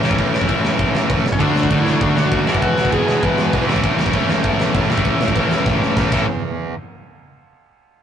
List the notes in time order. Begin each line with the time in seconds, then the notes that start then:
Already playing: E2
0.02 E1 A2 E3 A3 C#4 E4, snare
0.11 kick
0.18 E1, kick, crash
0.34 E1, snare
0.41 kick
0.47 E1 E3 A3 C#4 E4, kick, crash
0.65 E1, snare
0.79 E1, kick, crash
0.95 E1, snare
1.08 E1 A2 E3 A3, kick, crash
1.24 E1, snare
1.33 C#4, kick
1.39 D2 D3 A3 D4 F#4, kick, crash
1.55 D2, snare
1.63 kick
1.70 D2 E4, kick, crash
1.84 D2 D3 A3 D4 F#4, snare
2.01 D2 D4, kick, crash
2.16 D2 F#4, snare
2.32 F#2, kick, crash
2.46 E1 E2 B2 E3 G#3 B3 E4, snare
2.55 kick
2.62 E1 F#4, kick, crash
2.78 E1, snare
2.85 kick
2.91 E1 E2 B2 E3 G#3 B3 E4 G#4, kick, crash
2.96 E3
3.07 E1, snare
3.23 E1 B4, kick, crash
3.37 E1, snare
3.52 E1 E2 B2 E3, kick, crash
3.67 E1 A2 E3 A3 C#4 E4, snare
3.76 kick
3.83 E1, kick, crash
3.98 E1, snare
4.06 kick
4.13 E1 A2 E3 A3 C#4 E4, kick, crash
4.28 E1, snare
4.44 E1, kick, crash
4.59 E1, snare
4.74 E1 A2 E3 A3, kick, crash
4.89 E1 A2 E3 A3 C#4 E4, snare
4.97 kick
5.05 E1, kick, crash
5.20 E1, snare
5.28 kick
5.36 E1 A2 E3 A3 C#4 E4, kick, crash
5.51 E1, snare
5.66 E1, kick, snare
5.82 E1, snare
5.96 E1 A2 E3 A3, kick, snare
6.11 A1 A2 E3 A3 C#4 E4 A4, kick, crash